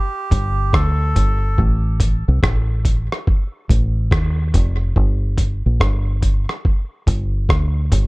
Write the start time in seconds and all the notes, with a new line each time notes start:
Already playing: G4
0.31 G1, kick, closed hi-hat
0.73 D2 A4, kick, cross-stick
1.16 G1, kick, closed hi-hat
1.58 A1, kick
2.00 kick, closed hi-hat
2.28 C2
2.43 A1, kick, cross-stick
2.85 kick, closed hi-hat
3.12 cross-stick
3.27 kick
3.69 A1, kick, closed hi-hat
4.11 D#2, kick, cross-stick
4.54 F1, kick, closed hi-hat
4.96 G1, kick
5.38 kick, closed hi-hat
5.66 A#1
5.80 G1, kick, cross-stick
6.22 kick, closed hi-hat
6.49 cross-stick
6.65 kick
7.07 G1, kick, closed hi-hat
7.49 D2, kick, cross-stick
7.92 G1, kick, closed hi-hat